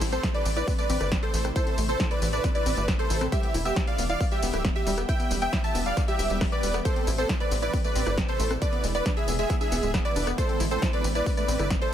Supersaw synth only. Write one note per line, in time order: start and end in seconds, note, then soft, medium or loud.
0.12 0.28 A4 medium
0.12 0.28 C5 medium
0.35 0.50 B4 medium
0.35 0.50 D5 medium
0.57 0.72 B4 medium
0.57 0.72 D5 medium
0.79 1.09 B4 medium
0.79 1.09 D5 loud
1.23 1.46 A4 medium
1.23 1.46 C5 medium
1.56 1.79 A4 medium
1.56 1.79 C5 loud
1.89 2.04 A4 medium
1.89 2.04 C5 medium
2.11 2.26 B4 medium
2.11 2.26 D5 medium
2.33 2.48 B4 medium
2.33 2.48 D5 medium
2.55 2.85 B4 medium
2.55 2.85 D5 loud
2.99 3.22 A4 medium
2.99 3.22 C5 loud
3.32 3.55 G4 medium
3.32 3.55 E5 loud
3.65 3.81 G4 medium
3.65 3.81 E5 loud
3.87 4.03 D5 medium
3.87 4.03 F5 medium
4.10 4.25 D5 medium
4.10 4.25 F5 medium
4.32 4.62 G4 medium
4.32 4.62 E5 loud
4.76 4.99 G4 medium
4.76 4.98 E5 medium
5.09 5.32 E5 medium
5.09 5.32 G5 loud
5.42 5.57 E5 medium
5.42 5.57 G5 medium
5.64 5.79 E5 medium
5.64 5.79 A5 medium
5.86 6.01 D5 medium
5.86 6.01 F5 medium
6.08 6.38 G4 medium
6.08 6.38 E5 loud
6.52 6.75 B4 medium
6.52 6.75 D5 medium
6.85 7.08 A4 medium
6.85 7.08 C5 loud
7.18 7.34 A4 medium
7.18 7.34 C5 medium
7.40 7.56 B4 medium
7.40 7.56 D5 loud
7.63 7.78 B4 medium
7.63 7.78 D5 medium
7.85 8.15 B4 medium
7.85 8.15 D5 loud
8.29 8.51 A4 medium
8.29 8.51 C5 loud
8.62 8.85 B4 medium
8.62 8.85 D5 loud
8.95 9.10 B4 medium
8.95 9.10 D5 medium
9.17 9.32 G#4 medium
9.17 9.32 E5 medium
9.39 9.54 G#4 medium
9.39 9.54 E5 medium
9.61 9.91 G#4 medium
9.61 9.91 E5 loud
10.05 10.28 B4 medium
10.05 10.28 D5 loud
10.38 10.61 A4 medium
10.38 10.61 C5 loud
10.71 10.86 A4 medium
10.71 10.86 C5 medium
10.93 11.08 B4 medium
10.93 11.08 D5 medium
11.15 11.30 B4 medium
11.15 11.30 D5 medium
11.37 11.68 B4 medium
11.37 11.68 D5 loud
11.81 11.94 A4 medium
11.81 11.94 C5 loud